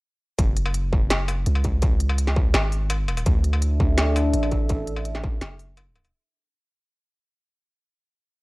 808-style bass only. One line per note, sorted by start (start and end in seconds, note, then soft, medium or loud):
0.39 0.91 F#1 medium
0.93 1.45 F#1 loud
1.47 2.53 C#2 loud
2.54 3.25 G#1 loud
3.26 3.79 D2 loud
3.80 4.33 D2 loud
4.34 5.40 A1 loud
5.42 6.12 F#1 loud